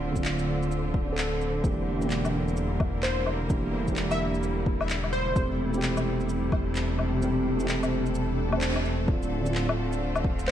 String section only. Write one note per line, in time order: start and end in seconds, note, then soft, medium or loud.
0.00 5.36 D3 medium
0.00 1.64 A3 medium
0.00 3.15 C4 medium
0.00 1.64 F4 medium
0.00 3.15 C5 medium
1.74 9.08 G3 medium
2.05 5.36 A#4 medium
2.09 5.36 A#3 medium
2.49 9.08 E4 medium
5.36 9.08 C3 medium
5.54 10.51 A3 medium
6.62 10.51 A4 medium
9.09 10.51 D3 medium
9.56 10.51 F4 medium
9.70 10.51 C4 medium